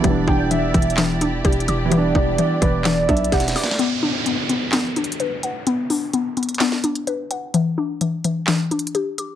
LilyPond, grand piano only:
<<
  \new Staff \with { instrumentName = "Grand piano" } { \time 4/4 \key b \minor \tempo 4 = 128 r1 | r4. b'8 d''8 e''8 fis''4 | r1 | r1 |
r1 | }
  \new Staff \with { instrumentName = "Grand piano" } { \time 4/4 \key b \minor <e g b d'>1 | <e g b d'>1 | r1 | r1 |
r1 | }
>>